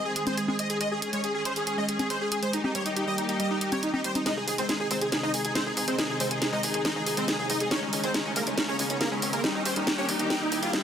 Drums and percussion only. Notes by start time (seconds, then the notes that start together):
0.16 closed hi-hat
0.27 closed hi-hat, high conga
0.37 closed hi-hat
0.48 high conga
0.59 closed hi-hat
0.70 closed hi-hat
0.81 closed hi-hat
1.02 closed hi-hat
1.13 closed hi-hat
1.24 closed hi-hat
1.45 closed hi-hat
1.56 closed hi-hat
1.67 closed hi-hat
1.89 closed hi-hat
1.99 closed hi-hat, high conga
2.10 closed hi-hat
2.32 closed hi-hat
2.43 closed hi-hat
2.53 closed hi-hat
2.64 high conga
2.75 closed hi-hat
2.86 closed hi-hat
2.96 closed hi-hat
3.18 closed hi-hat
3.29 closed hi-hat
3.40 closed hi-hat
3.61 closed hi-hat
3.72 closed hi-hat, high conga
3.83 closed hi-hat
3.94 high conga
4.04 closed hi-hat
4.15 closed hi-hat, high conga
4.26 snare, closed hi-hat
4.48 open hi-hat
4.58 closed hi-hat
4.69 snare, closed hi-hat
4.91 open hi-hat
5.01 closed hi-hat
5.12 snare, closed hi-hat
5.34 open hi-hat
5.45 closed hi-hat
5.55 snare, closed hi-hat
5.77 open hi-hat
5.88 closed hi-hat
5.99 snare, closed hi-hat
6.20 open hi-hat
6.31 closed hi-hat
6.42 snare, closed hi-hat
6.63 open hi-hat
6.74 closed hi-hat
6.85 snare, closed hi-hat
7.06 open hi-hat
7.17 closed hi-hat
7.28 snare, closed hi-hat
7.50 open hi-hat
7.60 closed hi-hat
7.71 snare, closed hi-hat
7.93 open hi-hat
8.04 closed hi-hat
8.14 snare, closed hi-hat
8.36 open hi-hat
8.47 closed hi-hat
8.58 snare, closed hi-hat
8.79 open hi-hat
8.90 closed hi-hat
9.01 snare, closed hi-hat
9.22 open hi-hat
9.33 closed hi-hat
9.44 snare, closed hi-hat
9.65 open hi-hat
9.76 closed hi-hat
9.87 snare, closed hi-hat
10.09 open hi-hat
10.19 closed hi-hat
10.30 snare, closed hi-hat
10.52 open hi-hat
10.63 closed hi-hat
10.73 snare, closed hi-hat